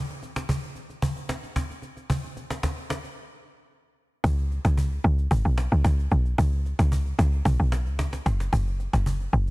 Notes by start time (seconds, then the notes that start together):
0.10 cajon slap
0.23 cajon slap
0.36 cajon slap
0.49 cajon bass
0.63 cajon slap
0.75 cajon slap
0.89 cajon slap
1.02 cajon bass
1.17 cajon slap
1.29 cajon slap
1.43 cajon slap
1.56 cajon bass, cajon slap
1.71 cajon slap
1.82 cajon slap
1.97 cajon slap
2.10 cajon bass
2.24 cajon slap
2.37 cajon slap
2.50 cajon slap
2.63 cajon bass, cajon slap
2.77 cajon slap
2.90 cajon slap
3.04 cajon slap
4.24 C#2, cajon bass
4.38 cajon slap
4.51 cajon slap
4.65 C#2, cajon slap
4.78 cajon bass
4.92 cajon slap
5.04 C#2, cajon slap
5.18 cajon slap
5.31 G#1, cajon bass
5.45 B1, cajon slap
5.57 cajon slap
5.72 C#2, cajon slap
5.84 C#2, cajon bass, cajon slap
5.99 cajon slap
6.11 B1, cajon slap
6.25 cajon slap
6.38 C#2, cajon bass
6.53 cajon slap
6.65 cajon slap
6.79 C#2, cajon slap
6.92 cajon bass
7.06 cajon slap
7.18 C#2, cajon slap
7.32 cajon slap
7.45 B1, cajon bass
7.59 B1, cajon slap
7.72 cajon slap
7.86 C#2, cajon slap
7.99 cajon bass, cajon slap
8.13 cajon slap
8.26 F#1, cajon slap
8.40 cajon slap
8.53 F#1, cajon bass
8.67 cajon slap
8.80 cajon slap
8.93 F#1, cajon slap
9.06 cajon bass
9.20 cajon slap
9.32 F#1, cajon slap
9.47 cajon slap